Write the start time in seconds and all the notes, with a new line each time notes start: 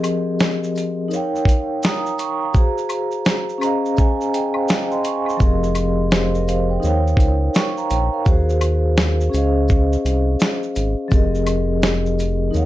Already playing: F3 C4 G4 G#4 A#4 D#5
0.04 closed hi-hat, high woodblock, maracas, shaker
0.39 snare, maracas, shaker
0.63 shaker
0.76 closed hi-hat, maracas, shaker
1.08 D#4 A#4 C#5, maracas
1.13 F5 G5, shaker
1.36 shaker
1.45 kick, closed hi-hat, maracas, shaker
1.83 A#5 D#6, snare, maracas, shaker
2.06 shaker
2.18 G5 C#6, closed hi-hat, maracas, shaker
2.41 F5 A#5
2.53 F#4 G#4, kick, maracas, shaker
2.57 C5
2.78 shaker
2.89 closed hi-hat, high woodblock, maracas, shaker
3.11 shaker
3.25 snare, maracas, shaker
3.49 shaker
3.58 C#4 G#4, high woodblock, maracas
3.62 C5 D#5 A#5, closed hi-hat, shaker
3.66 F5
3.85 shaker
3.97 G#5, kick, maracas, shaker
4.21 shaker
4.34 G#4 D#5 G5, closed hi-hat, maracas, shaker
4.54 C5 F5, high woodblock
4.68 F5 G#5, snare, shaker, maracas
4.91 D#5 F5 C6, shaker
5.04 C#6, closed hi-hat, maracas, shaker
5.26 F5 C6, high woodblock, shaker
5.37 F3 C4 G4, kick, maracas
5.41 F1 G#4 A#4 D#5, shaker
5.63 shaker
5.75 closed hi-hat, high woodblock, maracas, shaker
6.11 G4 C5, snare, maracas, shaker
6.34 A#4 D#5, shaker
6.48 C5 F5, closed hi-hat, maracas, shaker
6.70 C5 G5
6.80 D#4 A#4 C#5, maracas
6.84 D#2 F5 G5, shaker
7.07 shaker
7.17 C#2, kick, closed hi-hat, maracas, shaker
7.54 G5 C#6, snare, shaker, maracas
7.77 F5 A#5, shaker
7.90 A#1 C#5 G5, closed hi-hat, maracas, shaker
8.13 A#4 F5
8.25 D#2 F#4 G#4 C5, kick, maracas, shaker
8.49 shaker
8.61 closed hi-hat, high woodblock, maracas, shaker
8.97 snare, maracas, shaker
9.20 shaker
9.30 C#4 G#4 C5, maracas
9.34 C#2 D#5 F5, closed hi-hat, shaker
9.68 kick, maracas, shaker
9.93 shaker
10.05 C2, closed hi-hat, maracas, shaker
10.40 snare, maracas, shaker
10.63 shaker
10.75 G#1, closed hi-hat, maracas, shaker
11.08 F1 F3 C4 G4, kick, maracas
11.13 G#4 A#4 D#5, shaker
11.35 shaker
11.46 closed hi-hat, high woodblock, maracas, shaker
11.82 snare, maracas, shaker
12.06 shaker
12.19 closed hi-hat, maracas, shaker
12.51 D#2 D#4 A#4, maracas
12.55 C#5 F5 F#5, shaker